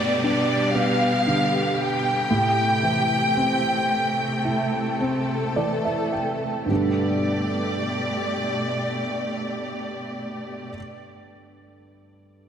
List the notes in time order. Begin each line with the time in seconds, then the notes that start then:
Already playing: G2 B2 D3 A3 B3 G4 D5, downlifter
0.24 G3 D4 D5
0.75 B3 F5
1.27 D3
1.79 G5
2.29 A2 C3 A3
2.83 E3
3.36 C4
4.45 E4 A4
5.01 C4
5.56 E3 D5
5.85 E5
6.13 G5
6.66 G2 D3 G3
6.70 B2 A3 B3 D4 G4 D5
6.75 A4